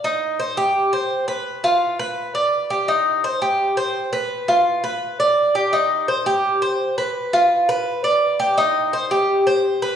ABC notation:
X:1
M:4/4
L:1/8
Q:1/4=169
K:Cm
V:1 name="Cuban tres"
E2 c G2 c2 =B- | =B F2 B2 d2 G | E2 c G2 c2 =B- | =B F2 B2 d2 G |
E2 c G2 c2 =B- | =B F2 B2 d2 G | E2 c G2 c2 =B |]